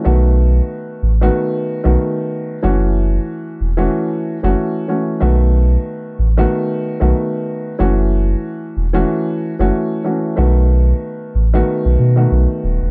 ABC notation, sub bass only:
X:1
M:4/4
L:1/16
Q:"Swing 16ths" 1/4=93
K:Bmix
V:1 name="Sub bass" clef=bass
B,,,4 z2 A,,,2 z3 B,,, z4 | F,,,4 z2 E,,,2 z3 F,,, z4 | B,,,4 z2 A,,,2 z3 B,,, z4 | F,,,4 z2 E,,,2 z3 F,,, z4 |
B,,,4 z2 A,,,2 z B,,, B,,2 B,,, z D,,, E,,, |]